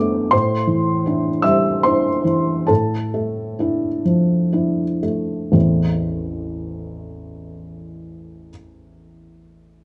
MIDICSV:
0, 0, Header, 1, 2, 480
1, 0, Start_track
1, 0, Key_signature, 0, "minor"
1, 0, Tempo, 728155
1, 214, Time_signature, 3, 2, 24, 8
1, 699, Tempo, 789474
1, 1179, Tempo, 839161
1, 1659, Tempo, 921659
1, 2619, Tempo, 993377
1, 4059, Tempo, 967742
1, 5213, End_track
2, 0, Start_track
2, 0, Title_t, "Felt piano"
2, 0, Program_c, 0, 0
2, 0, Control_c, 0, 64, 127
2, 0, Note_on_c, 0, 45, 56
2, 0, Note_on_c, 0, 55, 41
2, 0, Note_on_c, 0, 57, 54
2, 0, Note_on_c, 0, 59, 43
2, 0, Note_on_c, 0, 62, 46
2, 0, Note_on_c, 0, 74, 55
2, 0, Note_on_c, 0, 79, 66
2, 0, Note_on_c, 0, 86, 68
2, 0, Note_on_c, 0, 91, 84
2, 199, Note_off_c, 0, 45, 0
2, 204, Note_on_c, 0, 84, 79
2, 214, Note_on_c, 0, 45, 62
2, 215, Note_on_c, 0, 72, 60
2, 216, Note_off_c, 0, 57, 0
2, 225, Control_c, 0, 64, 0
2, 226, Note_off_c, 0, 55, 0
2, 226, Note_off_c, 0, 59, 0
2, 227, Note_off_c, 0, 62, 0
2, 227, Note_off_c, 0, 79, 0
2, 228, Note_off_c, 0, 91, 0
2, 229, Note_off_c, 0, 86, 0
2, 232, Note_off_c, 0, 74, 0
2, 350, Control_c, 0, 64, 127
2, 443, Note_on_c, 0, 52, 45
2, 698, Note_on_c, 0, 62, 44
2, 706, Note_on_c, 0, 64, 45
2, 836, Note_off_c, 0, 52, 0
2, 911, Note_off_c, 0, 62, 0
2, 912, Note_off_c, 0, 72, 0
2, 916, Note_off_c, 0, 64, 0
2, 920, Note_on_c, 0, 88, 73
2, 928, Note_on_c, 0, 55, 46
2, 929, Note_on_c, 0, 76, 57
2, 931, Note_off_c, 0, 84, 0
2, 1158, Note_off_c, 0, 76, 0
2, 1169, Note_on_c, 0, 84, 73
2, 1170, Note_off_c, 0, 88, 0
2, 1179, Note_on_c, 0, 62, 39
2, 1179, Note_on_c, 0, 64, 41
2, 1179, Note_on_c, 0, 72, 49
2, 1314, Note_off_c, 0, 55, 0
2, 1390, Note_off_c, 0, 62, 0
2, 1390, Note_off_c, 0, 64, 0
2, 1405, Note_on_c, 0, 52, 43
2, 1636, Note_off_c, 0, 45, 0
2, 1636, Note_off_c, 0, 72, 0
2, 1646, Note_on_c, 0, 81, 57
2, 1654, Note_off_c, 0, 84, 0
2, 1654, Note_on_c, 0, 69, 51
2, 1655, Note_off_c, 0, 52, 0
2, 1658, Note_on_c, 0, 45, 48
2, 1671, Control_c, 0, 64, 0
2, 1782, Control_c, 0, 64, 127
2, 1893, Note_on_c, 0, 57, 40
2, 2128, Note_on_c, 0, 62, 39
2, 2135, Note_on_c, 0, 64, 45
2, 2276, Note_off_c, 0, 57, 0
2, 2350, Note_off_c, 0, 62, 0
2, 2353, Note_off_c, 0, 64, 0
2, 2370, Note_on_c, 0, 53, 38
2, 2615, Note_on_c, 0, 62, 37
2, 2620, Note_on_c, 0, 64, 37
2, 2761, Note_off_c, 0, 53, 0
2, 2839, Note_off_c, 0, 62, 0
2, 2839, Note_off_c, 0, 69, 0
2, 2842, Note_off_c, 0, 64, 0
2, 2855, Note_off_c, 0, 81, 0
2, 2858, Note_on_c, 0, 57, 40
2, 3085, Note_off_c, 0, 45, 0
2, 3094, Note_off_c, 0, 57, 0
2, 3095, Note_on_c, 0, 33, 45
2, 3099, Note_on_c, 0, 52, 39
2, 3100, Note_on_c, 0, 40, 39
2, 3101, Note_on_c, 0, 57, 41
2, 3101, Note_on_c, 0, 64, 36
2, 3102, Note_on_c, 0, 60, 39
2, 3117, Control_c, 0, 64, 0
2, 3234, Control_c, 0, 64, 127
2, 4541, Note_off_c, 0, 33, 0
2, 4546, Note_off_c, 0, 40, 0
2, 4546, Note_off_c, 0, 52, 0
2, 4547, Note_off_c, 0, 57, 0
2, 4548, Note_off_c, 0, 60, 0
2, 4548, Note_off_c, 0, 64, 0
2, 5213, End_track
0, 0, End_of_file